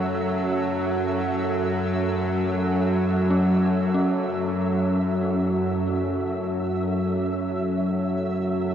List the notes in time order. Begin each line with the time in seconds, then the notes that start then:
Already playing: F#2 F#3 C#4 F#4 A4 E5 F#5
3.30 C#4
3.94 C#4